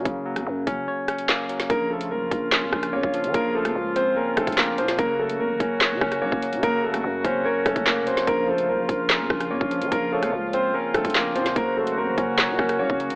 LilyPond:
<<
  \new Staff \with { instrumentName = "Soft synth lead" } { \time 4/4 \key bes \minor \tempo 4 = 146 r1 | r1 | r1 | r1 |
r1 | c''2 bes'4 r4 | r8 des''8 r2. | c''2 bes'4 r4 | }
  \new Staff \with { instrumentName = "Grand piano" } { \time 4/4 \key bes \minor r1 | <bes bes'>8 <a a'>8 <bes bes'>2 <des' des''>4 | <bes bes'>8 <a a'>8 r8 <c' c''>8 <bes bes'>8 <a a'>8 <bes bes'>8 <c' c''>8 | <bes bes'>8 <a a'>8 <bes bes'>2 <des' des''>4 |
<bes bes'>8 <a a'>8 r8 <c' c''>8 <bes bes'>8 <a a'>8 <bes bes'>8 <c' c''>8 | <bes bes'>8 <a a'>8 <bes bes'>2 <des' des''>4 | <bes bes'>8 <a a'>8 r8 <c' c''>8 <bes bes'>8 <a a'>8 <bes bes'>8 <c' c''>8 | <bes bes'>8 <a a'>8 <bes bes'>2 <des' des''>4 | }
  \new Staff \with { instrumentName = "Brass ensemble" } { \time 4/4 \key bes \minor << { r1 | <bes f'>1~ | <bes f'>1 | <ges ges'>1~ |
<ges ges'>1 | f'1~ | f'1 | <ges bes ges'>1 | } \\ { r1 | des1~ | des1~ | des1~ |
des1~ | des1~ | des1 | des1 | } >> }
  \new Staff \with { instrumentName = "Tine electric piano" } { \time 4/4 \key bes \minor <des ges bes des' des''>8 ges4 des'8 des''8 des'8 bes8 ges8 | des8 f4. des'4 bes8 f8 | des8 f4 c'8 des'8 c'8 bes8 f8 | des8 ges4 des'8 des''8 des'8 bes8 ges8 |
des8 ges4 des'8 des''8 des'8 bes8 ges8 | des8 f4. des'4 bes8 f8 | des8 f4 c'8 des'8 c'8 bes8 f8 | des8 ges4 des'8 des''8 des'8 bes8 ges8 | }
  \new Staff \with { instrumentName = "808-style bass" } { \clef bass \time 4/4 \key bes \minor ges,,8. ges,16 ges,8 ges,,8 r2 | bes,,4 c,16 bes,,16 bes,,8. f,16 bes,,8 f,16 bes,,8 f16 | bes,,8. f,16 des,4 r8 bes,,16 bes,,8. bes,8 | ges,,4 ges,16 ges,,16 ges,,8. des16 ges,,8 des,16 ges,,8 des16 |
ges,,8. ges,16 ges,8 ges,,8 r8 ges,16 ges,,8 f,,16. ges,,16. | bes,,4 c,16 bes,,16 bes,,8. f,16 bes,,8 f,16 bes,,8 f16 | bes,,8. f,16 des,4 r8 bes,,16 bes,,8. bes,8 | ges,,4 ges,16 ges,,16 ges,,8. des16 ges,,8 des,16 ges,,8 des16 | }
  \new DrumStaff \with { instrumentName = "Drums" } \drummode { \time 4/4 <hh bd>8. <hh ss>16 r8 <hh bd>8 r8 <hh ss>16 hh16 <hc sn>8 hh16 <hh sn>16 | <hh bd>8. hh16 r8 <hh bd>8 <hc sn>8 <bd ss>16 <hh ss>16 r16 bd16 hh16 hh16 | <hh bd>8. <hh ss>16 r8 hh8 r8 <hh bd ss>16 <hh bd>32 hh32 <hc hh sn>32 hh16. hh16 <hh sn>16 | <hh bd>8. hh16 r8 <hh bd>8 <hc sn>8 <bd ss>16 <hh ss>16 r16 bd16 hh16 hh16 |
<hh bd>8. <hh ss>16 r8 <hh bd>8 r8 <hh bd ss>16 <hh bd>16 <hc sn>8 hh16 <hh sn>16 | <hh bd>8. hh16 r8 <hh bd>8 <hc sn>8 <bd ss>16 <hh ss>16 r16 bd16 hh16 hh16 | <hh bd>8. <hh ss>16 r8 hh8 r8 <hh bd ss>16 <hh bd>32 hh32 <hc hh sn>32 hh16. hh16 <hh sn>16 | <hh bd>8. hh16 r8 <hh bd>8 <hc sn>8 <bd ss>16 <hh ss>16 r16 bd16 hh16 hh16 | }
>>